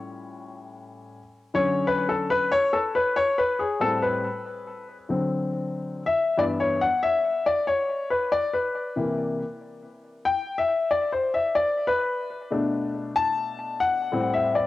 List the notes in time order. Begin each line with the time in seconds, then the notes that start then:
Already playing: A2 G3 C#4 F4 C#5
1.54 D3 F#3 C#4 C#5
1.87 B4
2.09 A4
2.30 B4
2.51 C#5
2.73 A4
2.95 B4
3.16 C#5
3.38 B4
3.59 G#4
3.80 A2 G3 C4 A4
4.02 B4
5.09 D3 F#3 C4
6.06 E5
6.38 G2 E3 B3 D5
6.60 C#5
6.81 F#5
7.03 E5
7.46 D5
7.67 C#5
8.10 B4
8.32 D5
8.53 B4
8.96 C3 E3 A#3
10.25 G5
10.58 E5
10.91 D5
11.12 C5
11.34 E5
11.55 D5
11.87 B4
12.51 B2 A3 D4
13.16 A5
13.80 F#5
14.12 A2 G3 C4
14.34 E5
14.55 D5